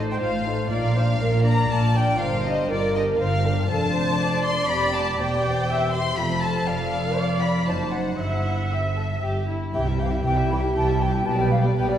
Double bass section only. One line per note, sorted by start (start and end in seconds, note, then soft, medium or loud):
0.00 0.14 A1 medium
0.20 0.64 A1 medium
0.70 1.14 A#1 medium
1.20 1.64 A#1 medium
1.70 2.14 A#1 medium
2.19 2.64 G1 medium
2.70 3.14 G1 medium
3.19 3.63 G1 medium
3.69 4.65 F1 medium
4.69 5.17 F1 medium
5.19 6.16 E1 medium
6.18 6.66 F1 medium
6.67 7.66 F1 medium
7.67 8.19 F#1 soft
8.19 9.21 G1 soft
9.24 9.54 G1 soft
9.74 10.19 C2 medium
10.25 10.70 C2 medium
10.75 11.19 C2 medium
11.25 11.69 B1 medium
11.75 11.98 B1 medium